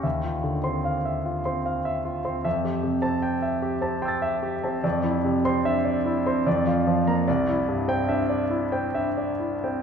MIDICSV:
0, 0, Header, 1, 2, 480
1, 0, Start_track
1, 0, Key_signature, -1, "minor"
1, 0, Tempo, 795756
1, 28, Time_signature, 3, 2, 24, 8
1, 2428, Tempo, 810811
1, 4828, Tempo, 864553
1, 5308, Tempo, 940439
1, 5757, End_track
2, 0, Start_track
2, 0, Title_t, "Grand piano"
2, 0, Program_c, 0, 0
2, 0, Control_c, 0, 64, 127
2, 20, Note_on_c, 0, 76, 43
2, 22, Note_on_c, 0, 39, 55
2, 36, Control_c, 0, 64, 0
2, 119, Control_c, 0, 64, 127
2, 147, Note_on_c, 0, 65, 36
2, 218, Note_off_c, 0, 76, 0
2, 259, Note_on_c, 0, 50, 47
2, 344, Note_off_c, 0, 65, 0
2, 383, Note_on_c, 0, 60, 38
2, 385, Note_on_c, 0, 84, 56
2, 463, Note_off_c, 0, 50, 0
2, 512, Note_on_c, 0, 77, 49
2, 587, Note_off_c, 0, 60, 0
2, 588, Note_off_c, 0, 84, 0
2, 635, Note_on_c, 0, 76, 40
2, 712, Note_off_c, 0, 77, 0
2, 757, Note_on_c, 0, 65, 43
2, 832, Note_off_c, 0, 76, 0
2, 877, Note_on_c, 0, 84, 50
2, 879, Note_on_c, 0, 60, 40
2, 953, Note_off_c, 0, 65, 0
2, 999, Note_on_c, 0, 77, 52
2, 1072, Note_off_c, 0, 84, 0
2, 1073, Note_off_c, 0, 60, 0
2, 1117, Note_on_c, 0, 76, 52
2, 1193, Note_off_c, 0, 77, 0
2, 1237, Note_on_c, 0, 65, 45
2, 1312, Note_off_c, 0, 76, 0
2, 1355, Note_on_c, 0, 60, 39
2, 1356, Note_on_c, 0, 84, 46
2, 1431, Note_off_c, 0, 65, 0
2, 1454, Note_off_c, 0, 39, 0
2, 1475, Note_on_c, 0, 76, 55
2, 1477, Note_on_c, 0, 41, 55
2, 1478, Note_off_c, 0, 60, 0
2, 1478, Note_off_c, 0, 84, 0
2, 1492, Control_c, 0, 64, 0
2, 1589, Control_c, 0, 64, 127
2, 1596, Note_on_c, 0, 67, 40
2, 1667, Note_off_c, 0, 76, 0
2, 1708, Note_on_c, 0, 48, 50
2, 1786, Note_off_c, 0, 67, 0
2, 1822, Note_on_c, 0, 60, 46
2, 1822, Note_on_c, 0, 81, 67
2, 1901, Note_off_c, 0, 48, 0
2, 1945, Note_on_c, 0, 79, 55
2, 2018, Note_off_c, 0, 60, 0
2, 2018, Note_off_c, 0, 81, 0
2, 2065, Note_on_c, 0, 76, 50
2, 2139, Note_off_c, 0, 79, 0
2, 2185, Note_on_c, 0, 67, 54
2, 2259, Note_off_c, 0, 76, 0
2, 2301, Note_on_c, 0, 60, 47
2, 2304, Note_on_c, 0, 81, 56
2, 2379, Note_off_c, 0, 67, 0
2, 2424, Note_on_c, 0, 84, 45
2, 2426, Note_on_c, 0, 79, 58
2, 2444, Note_on_c, 0, 88, 40
2, 2462, Note_on_c, 0, 93, 43
2, 2496, Note_off_c, 0, 60, 0
2, 2498, Note_off_c, 0, 81, 0
2, 2543, Note_on_c, 0, 76, 57
2, 2618, Note_off_c, 0, 79, 0
2, 2666, Note_on_c, 0, 67, 56
2, 2739, Note_off_c, 0, 76, 0
2, 2789, Note_on_c, 0, 81, 51
2, 2793, Note_on_c, 0, 60, 53
2, 2862, Note_off_c, 0, 67, 0
2, 2886, Note_off_c, 0, 84, 0
2, 2887, Note_off_c, 0, 41, 0
2, 2896, Note_off_c, 0, 88, 0
2, 2905, Note_off_c, 0, 93, 0
2, 2909, Note_on_c, 0, 41, 68
2, 2909, Note_on_c, 0, 74, 56
2, 2912, Note_off_c, 0, 81, 0
2, 2914, Note_off_c, 0, 60, 0
2, 2921, Control_c, 0, 64, 0
2, 3007, Control_c, 0, 64, 127
2, 3026, Note_on_c, 0, 64, 50
2, 3104, Note_off_c, 0, 74, 0
2, 3150, Note_on_c, 0, 48, 62
2, 3220, Note_off_c, 0, 64, 0
2, 3272, Note_on_c, 0, 60, 56
2, 3272, Note_on_c, 0, 84, 79
2, 3340, Note_off_c, 0, 48, 0
2, 3391, Note_on_c, 0, 62, 52
2, 3392, Note_on_c, 0, 76, 65
2, 3460, Note_off_c, 0, 60, 0
2, 3460, Note_off_c, 0, 84, 0
2, 3509, Note_on_c, 0, 74, 54
2, 3580, Note_off_c, 0, 62, 0
2, 3581, Note_off_c, 0, 76, 0
2, 3631, Note_on_c, 0, 64, 60
2, 3701, Note_off_c, 0, 74, 0
2, 3754, Note_on_c, 0, 60, 59
2, 3754, Note_on_c, 0, 84, 62
2, 3824, Note_off_c, 0, 64, 0
2, 3846, Note_off_c, 0, 41, 0
2, 3872, Note_on_c, 0, 74, 59
2, 3873, Note_off_c, 0, 60, 0
2, 3873, Note_off_c, 0, 84, 0
2, 3873, Note_on_c, 0, 41, 72
2, 3880, Control_c, 0, 64, 0
2, 3972, Control_c, 0, 64, 127
2, 3995, Note_on_c, 0, 65, 58
2, 4065, Note_off_c, 0, 74, 0
2, 4114, Note_on_c, 0, 53, 54
2, 4185, Note_off_c, 0, 65, 0
2, 4233, Note_on_c, 0, 82, 66
2, 4234, Note_on_c, 0, 58, 51
2, 4304, Note_off_c, 0, 53, 0
2, 4337, Note_off_c, 0, 41, 0
2, 4351, Note_off_c, 0, 82, 0
2, 4352, Note_off_c, 0, 58, 0
2, 4352, Note_on_c, 0, 74, 59
2, 4354, Note_on_c, 0, 36, 72
2, 4360, Control_c, 0, 64, 0
2, 4448, Control_c, 0, 64, 127
2, 4472, Note_on_c, 0, 64, 48
2, 4542, Note_off_c, 0, 74, 0
2, 4594, Note_on_c, 0, 43, 56
2, 4662, Note_off_c, 0, 64, 0
2, 4711, Note_on_c, 0, 60, 50
2, 4714, Note_on_c, 0, 79, 72
2, 4784, Note_off_c, 0, 43, 0
2, 4830, Note_on_c, 0, 62, 58
2, 4832, Note_on_c, 0, 76, 58
2, 4901, Note_off_c, 0, 60, 0
2, 4902, Note_off_c, 0, 79, 0
2, 4947, Note_on_c, 0, 74, 53
2, 5018, Note_off_c, 0, 62, 0
2, 5019, Note_off_c, 0, 76, 0
2, 5063, Note_on_c, 0, 64, 51
2, 5138, Note_off_c, 0, 74, 0
2, 5185, Note_on_c, 0, 60, 48
2, 5185, Note_on_c, 0, 79, 52
2, 5259, Note_off_c, 0, 64, 0
2, 5309, Note_on_c, 0, 62, 46
2, 5309, Note_on_c, 0, 76, 57
2, 5378, Note_off_c, 0, 60, 0
2, 5378, Note_off_c, 0, 79, 0
2, 5424, Note_on_c, 0, 74, 50
2, 5495, Note_off_c, 0, 76, 0
2, 5496, Note_off_c, 0, 62, 0
2, 5541, Note_on_c, 0, 64, 44
2, 5616, Note_off_c, 0, 74, 0
2, 5663, Note_on_c, 0, 60, 42
2, 5663, Note_on_c, 0, 79, 42
2, 5740, Note_off_c, 0, 64, 0
2, 5757, Note_off_c, 0, 36, 0
2, 5757, Note_off_c, 0, 60, 0
2, 5757, Note_off_c, 0, 79, 0
2, 5757, End_track
0, 0, End_of_file